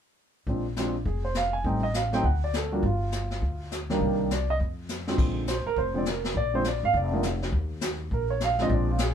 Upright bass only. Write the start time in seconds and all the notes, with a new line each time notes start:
0.47 A#1
1.06 F1
1.64 A1
2.24 D2
2.83 G1
3.42 D2
4.01 C2
4.60 F2
5.18 A#1
5.66 muted upright bass stroke
5.76 F1
6.35 A#1
6.83 G#1
6.94 F1
7.53 D#2
8.12 A#1
8.70 A#1